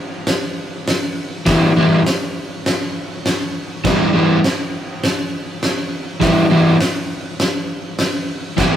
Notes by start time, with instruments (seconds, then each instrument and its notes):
0.27 snare, open hi-hat
0.87 snare, open hi-hat
1.46 overdriven electric guitar E3 G3 B3 E4, kick, snare, open hi-hat
1.77 overdriven electric guitar E3 G3 B3 E4
2.06 snare, open hi-hat
2.66 snare, open hi-hat
3.25 snare, open hi-hat
3.84 overdriven electric guitar E3 G3 B3 E4, kick, snare, crash
4.13 overdriven electric guitar E3 G3 B3 E4
4.44 snare, open hi-hat
5.03 snare, open hi-hat
5.62 snare, open hi-hat
6.20 overdriven electric guitar E3 G3 B3 E4, kick, snare, open hi-hat
6.50 overdriven electric guitar E3 G3 B3 E4
6.80 snare, open hi-hat
7.40 snare, open hi-hat
7.98 snare, open hi-hat
8.57 overdriven electric guitar E3 G3 B3 E4, kick, snare, crash